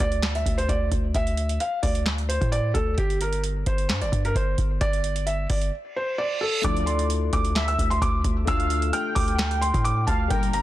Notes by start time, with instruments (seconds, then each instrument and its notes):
0.00 808-style bass D2, felt piano D5, kick, closed hi-hat
0.12 closed hi-hat
0.23 snare, clap, closed hi-hat
0.35 felt piano E5, closed hi-hat
0.46 808-style bass D2, kick, closed hi-hat
0.58 felt piano C5, closed hi-hat
0.69 808-style bass D2, felt piano D5, kick, closed hi-hat
0.92 808-style bass D2, kick, closed hi-hat
1.15 808-style bass D2, felt piano E5, kick, closed hi-hat
1.27 closed hi-hat
1.37 closed hi-hat
1.49 closed hi-hat
1.60 felt piano F5, closed hi-hat
1.83 808-style bass D2, felt piano D5, kick, open hi-hat
1.95 closed hi-hat
2.06 snare, clap, closed hi-hat
2.18 closed hi-hat
2.29 felt piano C5, closed hi-hat
2.41 808-style bass A2, kick, closed hi-hat
2.52 felt piano D5, closed hi-hat
2.74 808-style bass D2, felt piano A4, kick, closed hi-hat
2.98 808-style bass G1, felt piano G4, kick, closed hi-hat
3.10 closed hi-hat
3.21 felt piano A#4, closed hi-hat
3.33 closed hi-hat
3.44 closed hi-hat
3.66 808-style bass G1, felt piano C5, kick, closed hi-hat
3.78 closed hi-hat
3.89 808-style bass G2, snare, clap, closed hi-hat
4.01 808-style bass G1, felt piano D5, closed hi-hat
4.12 808-style bass G2, kick, closed hi-hat
4.25 felt piano A#4, closed hi-hat
4.35 808-style bass G1, felt piano C5, kick, closed hi-hat
4.58 808-style bass G1, kick, closed hi-hat
4.81 808-style bass G1, felt piano D5, kick, closed hi-hat
4.93 closed hi-hat
5.04 closed hi-hat
5.16 closed hi-hat
5.26 felt piano E5, closed hi-hat
5.50 808-style bass G1, felt piano D5, kick, open hi-hat
5.61 closed hi-hat
5.73 reverse cymbal
5.96 felt piano C5
6.18 felt piano D5
6.41 felt piano A4
6.62 808-style bass D2, analog polysynth A2 D3 F3, grand piano A3 D4 E4, soft synth lead D5, felt piano D6, kick, closed hi-hat
6.66 grand piano F4 A4
6.77 closed hi-hat
6.86 felt piano C6, closed hi-hat
6.99 closed hi-hat
7.10 closed hi-hat
7.33 808-style bass D2, felt piano D6, kick, closed hi-hat
7.45 closed hi-hat
7.56 soft synth lead E5, snare, clap, closed hi-hat
7.68 felt piano E6, closed hi-hat
7.79 808-style bass D2, kick, closed hi-hat
7.90 felt piano C6, closed hi-hat
8.02 808-style bass D2, felt piano D6, kick, closed hi-hat
8.24 808-style bass D2, kick, closed hi-hat
8.45 808-style bass D2, grand piano A3 D4, soft synth lead F5, felt piano E6, kick, closed hi-hat
8.49 grand piano F4 A4
8.60 closed hi-hat
8.70 closed hi-hat
8.82 closed hi-hat
8.93 soft synth lead G5, felt piano F6, closed hi-hat
9.15 808-style bass D2, felt piano D6, kick, open hi-hat
9.28 closed hi-hat
9.39 snare, clap, closed hi-hat
9.51 closed hi-hat
9.61 felt piano C6, closed hi-hat
9.74 808-style bass A2, kick, closed hi-hat
9.84 felt piano D6, closed hi-hat
10.07 808-style bass D2, soft synth lead F5, felt piano A5, kick, closed hi-hat
10.28 808-style bass G1, analog polysynth A#2 D3 G3, grand piano G3 A#3 D4, soft synth lead A#4, felt piano G5, kick, closed hi-hat
10.32 grand piano G4 A#4
10.43 closed hi-hat
10.53 felt piano A#5, closed hi-hat